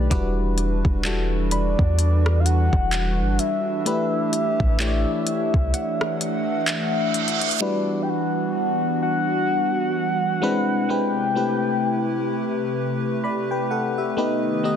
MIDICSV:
0, 0, Header, 1, 8, 480
1, 0, Start_track
1, 0, Key_signature, 1, "minor"
1, 0, Tempo, 937500
1, 57, Time_signature, 4, 2, 24, 8
1, 7559, End_track
2, 0, Start_track
2, 0, Title_t, "Synth pluck"
2, 0, Program_c, 0, 84
2, 58, Note_on_c, 0, 86, 63
2, 778, Note_on_c, 0, 83, 86
2, 1658, Note_off_c, 0, 86, 0
2, 2197, Note_off_c, 0, 83, 0
2, 2937, Note_on_c, 0, 78, 75
2, 4116, Note_off_c, 0, 78, 0
2, 7559, End_track
3, 0, Start_track
3, 0, Title_t, "Soft synth lead"
3, 0, Program_c, 1, 80
3, 778, Note_on_c, 1, 74, 103
3, 1228, Note_on_c, 1, 77, 83
3, 1236, Note_off_c, 1, 74, 0
3, 1256, Note_on_c, 1, 78, 120
3, 1264, Note_off_c, 1, 77, 0
3, 1736, Note_on_c, 1, 76, 113
3, 1743, Note_off_c, 1, 78, 0
3, 3416, Note_off_c, 1, 76, 0
3, 3420, Note_on_c, 1, 76, 91
3, 3899, Note_on_c, 1, 74, 97
3, 3907, Note_off_c, 1, 76, 0
3, 4108, Note_on_c, 1, 79, 69
3, 4116, Note_off_c, 1, 74, 0
3, 4142, Note_on_c, 1, 78, 93
3, 4150, Note_off_c, 1, 79, 0
3, 4379, Note_off_c, 1, 78, 0
3, 4382, Note_on_c, 1, 78, 97
3, 4603, Note_off_c, 1, 78, 0
3, 4621, Note_on_c, 1, 78, 122
3, 5580, Note_on_c, 1, 79, 126
3, 5588, Note_off_c, 1, 78, 0
3, 6538, Note_off_c, 1, 79, 0
3, 7259, Note_on_c, 1, 75, 90
3, 7559, Note_off_c, 1, 75, 0
3, 7559, End_track
4, 0, Start_track
4, 0, Title_t, "FM electric piano"
4, 0, Program_c, 2, 5
4, 0, Control_c, 2, 64, 127
4, 0, Note_on_c, 2, 57, 92
4, 0, Note_on_c, 2, 62, 82
4, 0, Note_on_c, 2, 63, 83
4, 0, Note_on_c, 2, 67, 83
4, 0, Note_on_c, 2, 71, 98
4, 53, Note_on_c, 2, 55, 93
4, 55, Note_off_c, 2, 62, 0
4, 55, Note_on_c, 2, 62, 82
4, 57, Note_on_c, 2, 64, 81
4, 60, Note_on_c, 2, 66, 82
4, 62, Note_off_c, 2, 71, 0
4, 62, Note_on_c, 2, 71, 98
4, 64, Control_c, 2, 64, 0
4, 65, Note_off_c, 2, 67, 0
4, 67, Note_off_c, 2, 57, 0
4, 69, Note_off_c, 2, 63, 0
4, 165, Control_c, 2, 64, 127
4, 435, Note_off_c, 2, 55, 0
4, 436, Note_off_c, 2, 62, 0
4, 437, Note_off_c, 2, 64, 0
4, 438, Note_off_c, 2, 66, 0
4, 439, Note_off_c, 2, 71, 0
4, 533, Note_on_c, 2, 55, 84
4, 535, Note_on_c, 2, 62, 74
4, 538, Note_on_c, 2, 64, 78
4, 540, Note_on_c, 2, 66, 78
4, 542, Note_on_c, 2, 69, 89
4, 1258, Note_off_c, 2, 55, 0
4, 1259, Note_off_c, 2, 62, 0
4, 1260, Note_off_c, 2, 64, 0
4, 1261, Note_off_c, 2, 66, 0
4, 1262, Note_off_c, 2, 69, 0
4, 1973, Note_on_c, 2, 57, 74
4, 1975, Note_on_c, 2, 62, 69
4, 1978, Note_on_c, 2, 64, 72
4, 1980, Note_on_c, 2, 67, 69
4, 1982, Note_on_c, 2, 71, 89
4, 1983, Control_c, 2, 64, 0
4, 2086, Control_c, 2, 64, 127
4, 2355, Note_off_c, 2, 57, 0
4, 2356, Note_off_c, 2, 62, 0
4, 2358, Note_off_c, 2, 64, 0
4, 2359, Note_off_c, 2, 67, 0
4, 2360, Note_off_c, 2, 71, 0
4, 2453, Note_on_c, 2, 57, 81
4, 2455, Note_on_c, 2, 62, 78
4, 2457, Note_on_c, 2, 64, 82
4, 2460, Note_on_c, 2, 67, 74
4, 2462, Note_on_c, 2, 73, 74
4, 2495, Note_on_c, 2, 74, 96
4, 2498, Note_off_c, 2, 73, 0
4, 3178, Note_off_c, 2, 57, 0
4, 3179, Note_off_c, 2, 62, 0
4, 3180, Note_off_c, 2, 64, 0
4, 3181, Note_off_c, 2, 67, 0
4, 3199, Note_off_c, 2, 74, 0
4, 3894, Note_on_c, 2, 55, 81
4, 3896, Note_on_c, 2, 62, 68
4, 3898, Note_on_c, 2, 64, 67
4, 3900, Note_on_c, 2, 66, 72
4, 3902, Note_on_c, 2, 71, 89
4, 3904, Control_c, 2, 64, 0
4, 3980, Control_c, 2, 64, 127
4, 4618, Note_off_c, 2, 55, 0
4, 4619, Note_off_c, 2, 62, 0
4, 4620, Note_off_c, 2, 64, 0
4, 4621, Note_off_c, 2, 66, 0
4, 4622, Note_off_c, 2, 71, 0
4, 5333, Note_on_c, 2, 56, 95
4, 5335, Note_on_c, 2, 60, 89
4, 5338, Note_on_c, 2, 62, 89
4, 5340, Note_on_c, 2, 64, 87
4, 5342, Control_c, 2, 64, 0
4, 5342, Note_on_c, 2, 71, 107
4, 5420, Control_c, 2, 64, 127
4, 5534, Note_off_c, 2, 56, 0
4, 5535, Note_off_c, 2, 60, 0
4, 5537, Note_off_c, 2, 62, 0
4, 5538, Note_off_c, 2, 64, 0
4, 5539, Note_off_c, 2, 71, 0
4, 5574, Note_on_c, 2, 56, 77
4, 5576, Note_on_c, 2, 60, 75
4, 5579, Note_on_c, 2, 62, 68
4, 5581, Note_on_c, 2, 64, 71
4, 5583, Note_on_c, 2, 71, 88
4, 5765, Note_off_c, 2, 56, 0
4, 5767, Note_off_c, 2, 60, 0
4, 5768, Note_off_c, 2, 62, 0
4, 5769, Note_off_c, 2, 64, 0
4, 5770, Note_off_c, 2, 71, 0
4, 5813, Note_on_c, 2, 57, 80
4, 5815, Note_on_c, 2, 60, 71
4, 5817, Note_on_c, 2, 64, 73
4, 5820, Note_on_c, 2, 67, 71
4, 5822, Note_on_c, 2, 71, 84
4, 5823, Control_c, 2, 64, 0
4, 5916, Control_c, 2, 64, 127
4, 6538, Note_off_c, 2, 57, 0
4, 6539, Note_off_c, 2, 60, 0
4, 6540, Note_off_c, 2, 64, 0
4, 6541, Note_off_c, 2, 67, 0
4, 6542, Note_off_c, 2, 71, 0
4, 6777, Note_on_c, 2, 83, 69
4, 6781, Note_on_c, 2, 74, 58
4, 6909, Note_off_c, 2, 83, 0
4, 6911, Note_off_c, 2, 74, 0
4, 6917, Note_on_c, 2, 79, 70
4, 6920, Note_on_c, 2, 71, 63
4, 7012, Note_off_c, 2, 79, 0
4, 7014, Note_off_c, 2, 71, 0
4, 7018, Note_on_c, 2, 78, 74
4, 7021, Note_on_c, 2, 69, 67
4, 7150, Note_off_c, 2, 78, 0
4, 7151, Note_off_c, 2, 69, 0
4, 7157, Note_on_c, 2, 76, 64
4, 7160, Note_on_c, 2, 67, 56
4, 7254, Note_off_c, 2, 67, 0
4, 7254, Note_on_c, 2, 57, 82
4, 7256, Note_on_c, 2, 59, 77
4, 7258, Note_on_c, 2, 63, 78
4, 7260, Note_on_c, 2, 67, 74
4, 7262, Note_on_c, 2, 71, 86
4, 7263, Control_c, 2, 64, 0
4, 7343, Control_c, 2, 64, 127
4, 7385, Note_off_c, 2, 76, 0
4, 7455, Note_off_c, 2, 57, 0
4, 7456, Note_off_c, 2, 59, 0
4, 7457, Note_off_c, 2, 63, 0
4, 7458, Note_off_c, 2, 67, 0
4, 7459, Note_off_c, 2, 71, 0
4, 7493, Note_on_c, 2, 57, 79
4, 7495, Note_on_c, 2, 59, 75
4, 7497, Note_on_c, 2, 63, 74
4, 7500, Note_on_c, 2, 67, 74
4, 7502, Note_on_c, 2, 75, 84
4, 7559, Note_off_c, 2, 57, 0
4, 7559, Note_off_c, 2, 59, 0
4, 7559, Note_off_c, 2, 63, 0
4, 7559, Note_off_c, 2, 67, 0
4, 7559, Note_off_c, 2, 75, 0
4, 7559, End_track
5, 0, Start_track
5, 0, Title_t, "Analog synth pad"
5, 0, Program_c, 3, 89
5, 0, Note_on_c, 3, 51, 77
5, 0, Note_on_c, 3, 67, 85
5, 0, Note_on_c, 3, 71, 71
5, 0, Note_on_c, 3, 74, 67
5, 52, Note_off_c, 3, 51, 0
5, 52, Note_off_c, 3, 67, 0
5, 52, Note_off_c, 3, 74, 0
5, 56, Note_on_c, 3, 52, 77
5, 56, Note_on_c, 3, 62, 67
5, 56, Note_on_c, 3, 66, 89
5, 57, Note_on_c, 3, 55, 75
5, 1957, Note_off_c, 3, 55, 0
5, 1957, Note_off_c, 3, 66, 0
5, 1978, Note_on_c, 3, 57, 72
5, 1978, Note_on_c, 3, 67, 88
5, 2928, Note_off_c, 3, 67, 0
5, 2937, Note_on_c, 3, 78, 88
5, 3876, Note_off_c, 3, 52, 0
5, 3876, Note_off_c, 3, 62, 0
5, 3876, Note_off_c, 3, 71, 0
5, 3878, Note_off_c, 3, 57, 0
5, 3887, Note_off_c, 3, 78, 0
5, 3896, Note_on_c, 3, 52, 84
5, 3896, Note_on_c, 3, 55, 75
5, 3896, Note_on_c, 3, 59, 71
5, 3896, Note_on_c, 3, 62, 73
5, 3896, Note_on_c, 3, 66, 91
5, 5322, Note_off_c, 3, 52, 0
5, 5322, Note_off_c, 3, 55, 0
5, 5322, Note_off_c, 3, 59, 0
5, 5322, Note_off_c, 3, 66, 0
5, 5335, Note_on_c, 3, 48, 88
5, 5335, Note_on_c, 3, 71, 78
5, 5336, Note_on_c, 3, 56, 72
5, 5336, Note_on_c, 3, 64, 89
5, 5797, Note_off_c, 3, 62, 0
5, 5812, Note_off_c, 3, 56, 0
5, 5812, Note_off_c, 3, 64, 0
5, 5817, Note_on_c, 3, 64, 75
5, 5817, Note_on_c, 3, 67, 92
5, 5818, Note_on_c, 3, 57, 73
5, 7237, Note_off_c, 3, 48, 0
5, 7242, Note_off_c, 3, 64, 0
5, 7257, Note_on_c, 3, 51, 77
5, 7559, Note_off_c, 3, 51, 0
5, 7559, Note_off_c, 3, 57, 0
5, 7559, Note_off_c, 3, 67, 0
5, 7559, Note_off_c, 3, 71, 0
5, 7559, End_track
6, 0, Start_track
6, 0, Title_t, "808-style bass"
6, 0, Program_c, 4, 38
6, 57, Note_on_c, 4, 28, 116
6, 421, Note_off_c, 4, 28, 0
6, 435, Note_on_c, 4, 28, 97
6, 896, Note_off_c, 4, 28, 0
6, 916, Note_on_c, 4, 40, 92
6, 1377, Note_off_c, 4, 40, 0
6, 1398, Note_on_c, 4, 28, 106
6, 1637, Note_on_c, 4, 31, 102
6, 1645, Note_off_c, 4, 28, 0
6, 1732, Note_off_c, 4, 31, 0
6, 2355, Note_on_c, 4, 33, 101
6, 2586, Note_off_c, 4, 33, 0
6, 2837, Note_on_c, 4, 36, 99
6, 2933, Note_off_c, 4, 36, 0
6, 7559, End_track
7, 0, Start_track
7, 0, Title_t, "Reverse cymbal"
7, 0, Program_c, 5, 119
7, 2937, Note_on_c, 5, 60, 89
7, 3897, Note_off_c, 5, 60, 0
7, 7559, End_track
8, 0, Start_track
8, 0, Title_t, "Drums"
8, 56, Note_on_c, 9, 36, 105
8, 56, Note_on_c, 9, 42, 56
8, 108, Note_off_c, 9, 36, 0
8, 108, Note_off_c, 9, 42, 0
8, 295, Note_on_c, 9, 42, 64
8, 346, Note_off_c, 9, 42, 0
8, 434, Note_on_c, 9, 36, 91
8, 486, Note_off_c, 9, 36, 0
8, 537, Note_on_c, 9, 39, 115
8, 537, Note_on_c, 9, 42, 63
8, 588, Note_off_c, 9, 39, 0
8, 588, Note_off_c, 9, 42, 0
8, 775, Note_on_c, 9, 42, 76
8, 826, Note_off_c, 9, 42, 0
8, 916, Note_on_c, 9, 36, 90
8, 967, Note_off_c, 9, 36, 0
8, 1017, Note_on_c, 9, 42, 71
8, 1068, Note_off_c, 9, 42, 0
8, 1157, Note_on_c, 9, 37, 96
8, 1208, Note_off_c, 9, 37, 0
8, 1259, Note_on_c, 9, 42, 60
8, 1310, Note_off_c, 9, 42, 0
8, 1397, Note_on_c, 9, 36, 98
8, 1448, Note_off_c, 9, 36, 0
8, 1496, Note_on_c, 9, 42, 67
8, 1498, Note_on_c, 9, 39, 108
8, 1547, Note_off_c, 9, 42, 0
8, 1550, Note_off_c, 9, 39, 0
8, 1736, Note_on_c, 9, 42, 67
8, 1787, Note_off_c, 9, 42, 0
8, 1977, Note_on_c, 9, 42, 58
8, 2029, Note_off_c, 9, 42, 0
8, 2216, Note_on_c, 9, 42, 63
8, 2268, Note_off_c, 9, 42, 0
8, 2355, Note_on_c, 9, 36, 91
8, 2406, Note_off_c, 9, 36, 0
8, 2458, Note_on_c, 9, 39, 118
8, 2458, Note_on_c, 9, 42, 64
8, 2509, Note_off_c, 9, 39, 0
8, 2510, Note_off_c, 9, 42, 0
8, 2696, Note_on_c, 9, 42, 79
8, 2747, Note_off_c, 9, 42, 0
8, 2836, Note_on_c, 9, 36, 92
8, 2887, Note_off_c, 9, 36, 0
8, 2938, Note_on_c, 9, 42, 76
8, 2989, Note_off_c, 9, 42, 0
8, 3078, Note_on_c, 9, 37, 97
8, 3129, Note_off_c, 9, 37, 0
8, 3179, Note_on_c, 9, 42, 65
8, 3230, Note_off_c, 9, 42, 0
8, 3417, Note_on_c, 9, 42, 70
8, 3419, Note_on_c, 9, 39, 105
8, 3468, Note_off_c, 9, 42, 0
8, 3470, Note_off_c, 9, 39, 0
8, 3657, Note_on_c, 9, 42, 57
8, 3708, Note_off_c, 9, 42, 0
8, 3727, Note_on_c, 9, 42, 59
8, 3778, Note_off_c, 9, 42, 0
8, 3796, Note_on_c, 9, 42, 57
8, 3846, Note_off_c, 9, 42, 0
8, 3846, Note_on_c, 9, 42, 59
8, 3898, Note_off_c, 9, 42, 0
8, 7559, End_track
0, 0, End_of_file